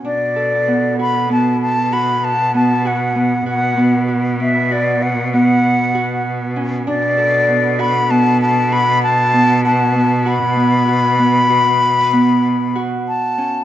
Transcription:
<<
  \new Staff \with { instrumentName = "Flute" } { \time 11/8 \key b \minor \tempo 4 = 97 d''4. b''8 a''8 a''8 b''8 a''8 a''8 fis''4 | fis''4 r8 e''8 d''8 fis''8 fis''2 r8 | d''4. b''8 a''8 a''8 b''8 a''4 a''4 | b''1~ b''8 a''4 | }
  \new Staff \with { instrumentName = "Harp" } { \time 11/8 \key b \minor d'8 a'8 b8 fis'8 b4 fis'4 b8 fis'8 b8 | fis'8 b8 fis'8 b8 fis'4 b4 fis'4 cis'8 | d'8 a'8 b8 fis'8 b4 fis'4 b8 fis'8 b8 | fis'8 b8 fis'8 b8 fis'4 b4 fis'4 cis'8 | }
  \new Staff \with { instrumentName = "Cello" } { \clef bass \time 11/8 \key b \minor b,1~ b,4.~ | b,1~ b,4. | b,1~ b,4.~ | b,1~ b,8 r4 | }
>>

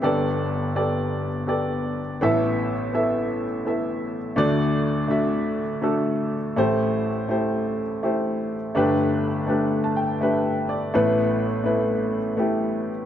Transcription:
<<
  \new Staff \with { instrumentName = "Upright piano" } { \time 3/4 \key a \dorian \tempo 4 = 83 << { r2. | r2. | r2. | r2. |
r4 \tuplet 3/2 { r8. a''16 g''8 e''4 d''8 } | r2. | } \\ { <b g' a' d''>8 r8 <b g' a' d''>8 r8 <b g' a' d''>8 r8 | <b e' a' e''>8 r8 <b e' a' e''>8 r8 <b e' a' e''>8 r8 | <a d' fis' d''>8 r8 <a d' fis' e''>8 r8 <a d' fis' a'>8 r8 | <a e' g' c''>8 r8 <a e' g' c''>8 r8 <a e' g' c''>8 r8 |
<a d' g' b'>8 r8 <a d' g' b'>8 r8 <a d' g' b'>8 r8 | <a b e' b'>8 r8 <a b e' b'>8 r8 <a b e' g'>8 r8 | } >> }
  \new Staff \with { instrumentName = "Upright piano" } { \clef bass \time 3/4 \key a \dorian <g,, g,>2. | <a,, a,>2. | <d, d>2. | <a,, a,>2. |
<g,, g,>2. | <a,, a,>2. | }
>>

